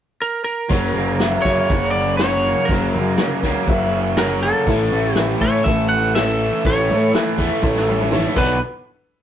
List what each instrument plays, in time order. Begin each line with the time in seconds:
0.22 lead electric guitar A#4
0.44 lead electric guitar A#4
0.69 picked electric bass F#1, overdriven electric guitar F#2 C#3, distorted electric guitar F#3, honky-tonk piano F#4 A#4 C#5, kick, open hi-hat
0.74 overdriven electric guitar F#3
0.94 picked electric bass F#1, distorted electric guitar A#3
1.20 distorted electric guitar F#3, honky-tonk piano F#4 A#4 E5, snare, open hi-hat
1.42 picked electric bass F#2, overdriven electric guitar F#3, distorted electric guitar A#3, lead electric guitar C#5, kick
1.47 overdriven electric guitar F#2 C#3
1.70 picked electric bass F#1, distorted electric guitar F#4, honky-tonk piano F#4 A#4 C#5, kick, open hi-hat
1.91 distorted electric guitar C#4, lead electric guitar D5
2.17 overdriven electric guitar F#2 C#3, honky-tonk piano F#4 A#4 C#5, distorted electric guitar F#4, lead electric guitar C#5, snare, open hi-hat
2.22 overdriven electric guitar F#3
2.45 distorted electric guitar A#3
2.65 picked electric bass F#1, overdriven electric guitar F#2, lead electric guitar A#4, kick, open hi-hat
2.70 overdriven electric guitar C#3 F#3, distorted electric guitar F#3, honky-tonk piano F#4 A#4 C#5
2.94 picked electric bass F#2, distorted electric guitar A#3
3.18 distorted electric guitar F#3, honky-tonk piano F#4 A#4 C#5, snare, open hi-hat
3.43 picked electric bass C#2, overdriven electric guitar C#3 F#3, distorted electric guitar A#3, kick, snare
3.47 overdriven electric guitar F#2
3.67 picked electric bass F#1, distorted electric guitar F#4, honky-tonk piano F#4 A#4 E5, kick, open hi-hat
3.93 distorted electric guitar C#4
4.17 overdriven electric guitar F#2 C#3 F#3, honky-tonk piano F#4 A#4 C#5, distorted electric guitar F#4, lead electric guitar A#4, snare, open hi-hat
4.43 distorted electric guitar A#3, lead electric guitar A4
4.67 picked electric bass A1, overdriven electric guitar A2 E3, distorted electric guitar A2, honky-tonk piano E4 A4 C#5, kick, open hi-hat
4.71 overdriven electric guitar A3
4.92 picked electric bass A1, distorted electric guitar A3
5.15 distorted electric guitar E3, honky-tonk piano E4 A4 B4, lead electric guitar G4, snare, open hi-hat
5.41 picked electric bass A2, overdriven electric guitar A2 E3 A3, distorted electric guitar A3, lead electric guitar C#5, kick
5.64 picked electric bass A1, honky-tonk piano E4 A4 B4, distorted electric guitar A4, lead electric guitar E5, kick, open hi-hat
5.89 distorted electric guitar C#4, lead electric guitar F#5
6.15 overdriven electric guitar A2 E3 A3, honky-tonk piano E4 A4 C#5, distorted electric guitar A4, lead electric guitar E5, snare, open hi-hat
6.41 distorted electric guitar A3
6.65 picked electric bass A1, overdriven electric guitar A2 E3 A3, distorted electric guitar A2, honky-tonk piano E4 A4 C#5, lead electric guitar C#5, kick, open hi-hat
6.90 picked electric bass A2, distorted electric guitar A3
7.14 distorted electric guitar E3, honky-tonk piano E4 A4 B4, snare, open hi-hat
7.38 picked electric bass E2, overdriven electric guitar A2 E3 A3, distorted electric guitar A3, kick
7.62 picked electric bass A1, honky-tonk piano E4 A4 C#5, distorted electric guitar A4, kick
7.76 snare
7.87 distorted electric guitar C#4, mid tom
8.01 mid tom
8.11 overdriven electric guitar A2 E3 A3, honky-tonk piano E4 A4 C#5, distorted electric guitar A4, mid tom
8.25 mid tom
8.35 picked electric bass B1, overdriven electric guitar B2 F#3 B3, distorted electric guitar B2 F#3 B3 D4 F#4, honky-tonk piano D4 A4 B4, lead electric guitar B4, kick, crash